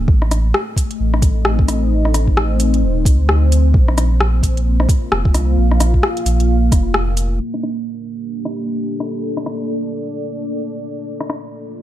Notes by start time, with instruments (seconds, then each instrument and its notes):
Already playing: analog synth pad G4 A4
0.08 sub bass A1, analog synth pad A3, kick
0.22 analog synth pad D#5, cross-stick
0.29 analog synth pad C4, cross-stick, closed hi-hat, cabasa
0.49 analog synth pad D#4 C5
0.54 cross-stick
0.77 kick, closed hi-hat, cabasa
0.91 closed hi-hat
1.00 sub bass A1
1.14 cross-stick
1.22 kick, closed hi-hat, cabasa
1.45 cross-stick
1.59 kick
1.68 cross-stick, closed hi-hat, cabasa
2.05 cross-stick
2.14 cross-stick, closed hi-hat, cabasa
2.28 kick
2.37 cross-stick
2.60 closed hi-hat, cabasa
2.74 closed hi-hat
2.83 sub bass D#1
3.05 sub bass D2, kick, closed hi-hat, cabasa
3.29 cross-stick
3.52 closed hi-hat, cabasa
3.74 sub bass A#1, analog synth pad A#3, kick
3.88 cross-stick
3.98 cross-stick, closed hi-hat, cabasa
4.16 analog synth pad F4
4.21 cross-stick
4.43 sub bass A#1, kick, closed hi-hat, cabasa
4.47 analog synth pad F5
4.57 closed hi-hat
4.80 cross-stick
4.89 kick, closed hi-hat, cabasa
5.12 sub bass F1, cross-stick
5.25 kick
5.34 sub bass C2, cross-stick, closed hi-hat, cabasa
5.57 sub bass A#1
5.72 cross-stick
5.80 cross-stick, closed hi-hat, cabasa
5.94 kick
6.03 cross-stick
6.17 closed hi-hat
6.26 sub bass A#1, closed hi-hat, cabasa
6.40 closed hi-hat
6.72 sub bass F1, kick, cross-stick, closed hi-hat, cabasa
6.94 cross-stick
7.17 closed hi-hat, cabasa
7.49 analog synth pad D4
7.54 cross-stick
7.63 analog synth pad G4, cross-stick
8.01 analog synth pad A4
8.23 analog synth pad D5
8.45 cross-stick
9.00 cross-stick
9.37 cross-stick
9.46 cross-stick
11.07 analog synth pad F4
11.21 cross-stick
11.30 cross-stick